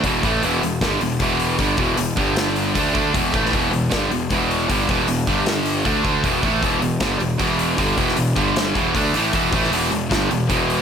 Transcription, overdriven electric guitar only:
X:1
M:4/4
L:1/8
Q:1/4=155
K:Em
V:1 name="Overdriven electric guitar" clef=bass
[E,,B,,E,] [A,,E,A,] [E,,B,,E,] [E,,B,,] [G,,D,G,] [E,,B,,] [E,,B,,E,]2 | [G,,D,G,] [E,,B,,E,] [E,,B,,] [G,,D,G,]3 [D,A,D] [D,A,D] | [E,,B,,E,] [A,,E,A,] [E,,B,,E,] [E,,B,,] [G,,D,G,] [E,,B,,] [E,,B,,E,]2 | [G,,D,G,] [E,,B,,E,] [E,,B,,] [G,,D,G,]3 [D,A,D] [D,A,D] |
[E,,B,,E,] [A,,E,A,] [E,,B,,E,] [E,,B,,] [G,,D,G,] [E,,B,,] [E,,B,,E,]2 | [G,,D,G,] [E,,B,,E,] [E,,B,,] [G,,D,G,]2 [E,,B,,E,] [D,A,D] [A,,E,A,] | [E,,B,,E,] [A,,E,A,] [E,,B,,E,] [E,,B,,] [G,,D,G,] [E,,B,,] [E,,B,,E,]2 |]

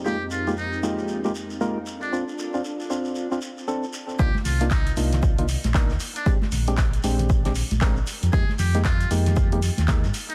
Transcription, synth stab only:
X:1
M:4/4
L:1/16
Q:"Swing 16ths" 1/4=116
K:Fdor
V:1 name="Synth stab"
[A,B,EFG] z2 [A,B,EFG] z2 [A,B,EFG]3 [A,B,EFG] z2 [A,B,EFB] z3 | [CDF] z2 [CDF] z2 [CDF]3 [CDF] z2 [CD=A] z3 | [B,DEF] z2 [B,DEF] z2 [B,DEF]3 [B,DEF] z2 [B,DEB] z3 | [A,CDG] z2 [A,CDG] z2 [A,CDG]3 [A,CDG] z2 [A,CDB] z3 |
[A,B,EG] z2 [A,B,EG] z2 [A,B,EG]3 [A,B,EG] z2 [A,B,EB] z3 |]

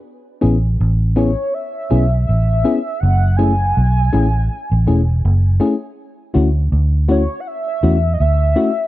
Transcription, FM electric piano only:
X:1
M:4/4
L:1/8
Q:"Swing 16ths" 1/4=81
K:A
V:1 name="FM electric piano"
z [B,CEG] z [B,CEG] z [B,CEG] z [B,CEG] | z [A,CEG] z [A,CEG] z [A,CEG] z [A,CEG] | z [A,CEF] z [A,CEF] z [A,CEF] z [A,CEF] |]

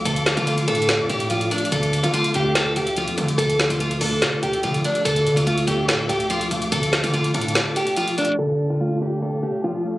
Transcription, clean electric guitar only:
X:1
M:4/4
L:1/8
Q:1/4=144
K:Dm
V:1 name="Clean electric guitar"
[D,F,A,d]2 A, D d2 F, A, | D,2 A, D d2 F, A, | D,2 A, D d2 F, A, | D,2 A, D d2 F, A, |
D,2 A, D d2 F, A, | D,2 A, D d2 F, A, |]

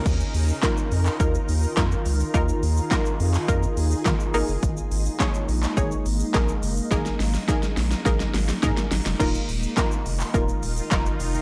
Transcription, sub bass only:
X:1
M:4/4
L:1/16
Q:1/4=105
K:Abdor
V:1 name="Sub bass" clef=bass
E,,2 E,,2 z2 F,,2 E,,2 E,,2 F,,2 D,,2 | E,,2 E,,2 z2 F,,2 F,,2 E,,2 E, z A,,, G,,, | A,,,2 A,,,2 z2 B,,,2 A,,,2 A,,,2 B,,,2 G,,,2 | A,,,2 A,,,2 z2 B,,,2 B,,,2 A,,,2 A,, z A,,, F,,, |
E,,,2 E,,,2 z2 F,,,2 E,,,2 E,,,2 F,,,2 F,,,2 |]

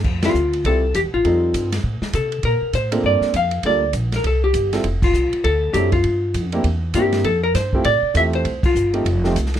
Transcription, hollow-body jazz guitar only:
X:1
M:4/4
L:1/8
Q:"Swing" 1/4=200
K:F
V:1 name="Hollow-body jazz guitar"
z F3 A2 G F- | F3 z3 A2 | B2 c2 d2 f2 | d2 z B A G2 z |
z F3 A2 G F- | F3 z3 G2 | A B c2 d2 e c- | c F6 z |]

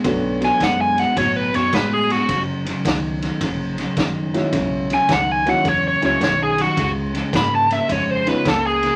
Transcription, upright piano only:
X:1
M:4/4
L:1/8
Q:"Swing" 1/4=107
K:F#mix
V:1 name="Upright piano"
[=A,B,C=DF]3 z4 z | z6 z [G,A,CEF]- | [G,A,CEF]2 z [G,A,CEF] z [G,A,CEF] z2 | z4 z [G,B,CD^E] z2 |]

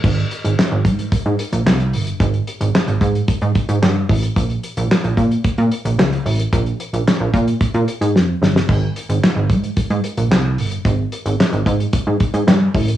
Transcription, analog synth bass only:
X:1
M:4/4
L:1/16
Q:1/4=111
K:Ab
V:1 name="Analog synth bass" clef=bass
A,,,2 z A,,, z A,,, A,,2 A,, A,, z B,,, C,,2 G,,,2 | A,,,2 z A,,, z A,,, A,,2 A,, A,, z A,, G,,2 =A,,,2 | B,,,2 z B,,, z B,,, B,,2 B,, B,, z B,,, D,,2 =A,,,2 | B,,,2 z B,,, z B,,, B,,2 B,, B,, z A,, F,,2 G,,,2 |
A,,,2 z A,,, z A,,, A,,2 A,, A,, z B,,, C,,2 G,,,2 | A,,,2 z A,,, z A,,, A,,2 A,, A,, z A,, G,,2 =A,,,2 |]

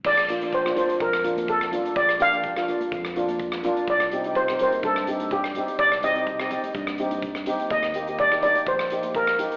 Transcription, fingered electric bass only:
X:1
M:4/4
L:1/8
Q:"Swing 16ths" 1/4=125
K:Bb
V:1 name="Fingered electric bass" clef=bass
B,,,4 F,,4 | B,,,4 F,,4 | C,,4 G,,4 | C,,4 G,,4 |
E,,4 B,,,4 |]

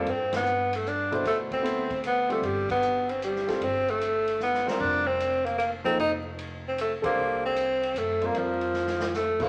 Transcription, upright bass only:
X:1
M:3/4
L:1/8
Q:"Swing" 1/4=152
K:Gmix
V:1 name="Upright bass" clef=bass
G,,6 | D,,6 | G,,,4- G,,, z | G,,,4- G,,, z |
F,,,6 | F,,,4- F,,, z | C,,4 ^F,,2 | F,,6 |]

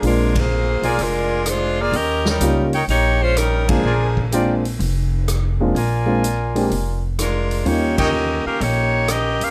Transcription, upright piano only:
X:1
M:4/4
L:1/8
Q:"Swing" 1/4=126
K:Bbmix
V:1 name="Upright piano"
[A,B,CDF] z6 z | z2 [G,B,_DEF] z4 [A,B,C=DF] | z2 [A,B,CDF] z4 [A,B,CDF] | z [A,B,CDF] z [A,B,CDG] z4 |
[G,B,_DEF]4- [G,B,DEF] z3 |]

